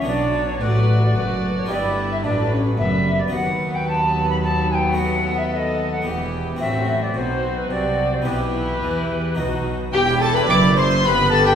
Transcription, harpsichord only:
X:1
M:3/4
L:1/16
Q:1/4=110
K:Glyd
V:1 name="Harpsichord"
[B,DF]12 | [B,DG]12 | [K:Em] [B,F]12 | [A,B,F]8 [B,E]4 |
[CF]12 | [B,EG]8 [B,^DF]4 | z G B G e f e B E B G B |]
V:2 name="Harpsichord" clef=bass
B,,4 A,,4 F,,4 | G,,4 A,,4 F,,4 | [K:Em] ^D,,12- | ^D,,8 E,,4 |
A,,4 B,,4 C,4 | B,,4 E,4 B,,4 | E,,4 F,,4 G,,4 |]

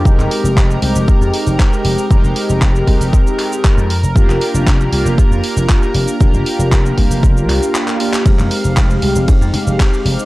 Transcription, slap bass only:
X:1
M:4/4
L:1/16
Q:1/4=117
K:Fdor
V:1 name="Slap bass" clef=bass
F,,, F,,, z F,,,3 C,, F,,, z F,, z F,,, z2 F,,, z | F,,, F,,, z F,,,3 C,, F,,, z4 z F,,2 F,,, | F,,, F,,, z F,,,3 C,, F,,, z F,, z F,,, z2 F,,, z | F,,, F,,, z F,,,3 C,, F,,,3 C,, z4 z |
F,,, F,,, z F,,,3 C,, F,,, z F,, z F,,, z2 F,,, z |]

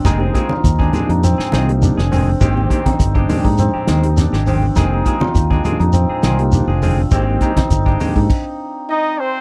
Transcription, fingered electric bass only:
X:1
M:4/4
L:1/16
Q:1/4=102
K:Fdor
V:1 name="Fingered electric bass" clef=bass
F,,,2 z2 E,,2 z F,,2 z C,,3 F,,,3 | A,,,2 z2 G,,,2 z A,,2 z E,,3 A,,,3 | F,,,2 z2 E,,2 z F,,2 z C,,3 F,,,3 | A,,,2 z2 G,,,2 z A,, z8 |]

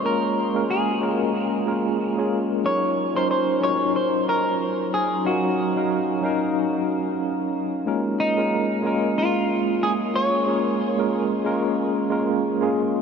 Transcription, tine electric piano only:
X:1
M:4/4
L:1/16
Q:"Swing 16ths" 1/4=92
K:Ebm
V:1 name="Tine electric piano"
[A,B,DFB]3 [A,B,DFB]3 [A,B,DFB]4 [A,B,DFB]3 [A,B,DFA]3 | [G,DEFB]3 [G,DEFB]3 [G,DEFB]8- [G,DEFB]2 | [G,DEBf]3 [G,DEBf]3 [G,DEBf]8- [G,DEBf]2 | [A,B,DFB]3 [A,B,DFB]3 [A,B,DFB]8- [A,B,DFB]2 |
[A,B,DFB]3 [A,B,DFB]3 [A,B,DFB]4 [A,B,DFB]3 [A,B,DFA]3 |]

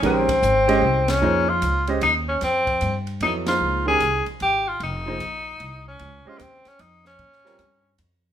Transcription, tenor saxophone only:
X:1
M:3/4
L:1/16
Q:"Swing" 1/4=151
K:Bbdor
V:1 name="Tenor saxophone"
C8- C2 D2- | D2 F4 z2 E2 D2 | C4- C3/2 z2 z/2 E2 F2- | F2 A4 z2 G2 F2 |
E8- E2 D2- | D2 F3/2 B,/2 C2 D2 E2 D2- | D8 z4 |]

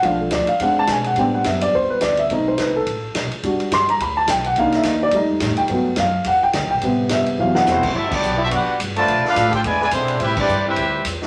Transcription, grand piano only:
X:1
M:4/4
L:1/16
Q:"Swing" 1/4=212
K:G
V:1 name="Grand piano"
=f2 A2 d2 f2 ^f2 a2 ^g2 f2 | g2 f2 e2 d2 c2 B2 d2 e2 | ^d2 c2 B2 A6 z4 | z4 c'2 _b2 =b2 a2 g2 f2 |
=f2 e2 _e2 d2 e2 z4 g2- | g4 =f4 ^f2 g4 g2- | g4 e4 =f2 ^f4- f z | z16 |
z16 | z16 |]
V:2 name="Grand piano"
[=F,A,D]6 z2 [^G,CD]8 | [G,B,CD]16 | [A,C^D]6 z8 z2 | [G,DF]6 z8 z2 |
[_B,D_E]8 [G,A,E]8 | [F,A,B,]2 z12 z2 | [C,G,B,]8 [C,E,F,B,]6 z2 | z16 |
z16 | z16 |]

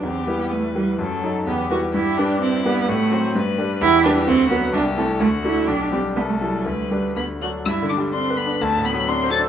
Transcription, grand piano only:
X:1
M:2/4
L:1/8
Q:1/4=126
K:Em
V:1 name="Grand piano"
E,, [G,EB]2 [G,EB] | F,, [F,^DA] E,, [G,EB] | G,, [G,DB]2 [G,DB] | A,, [F,Cc] G,, [G,DB] |
[K:G] E,, [G,EB] D,, [F,FB] | C,, [A,EA] D,, [A,DF] | B,,, [G,DG] C,, [G,EA] | D,, [G,DB] D,, [F,DA] |
(3G,, D, G, (3D B D | (3D,, A,, F, (3D c D |]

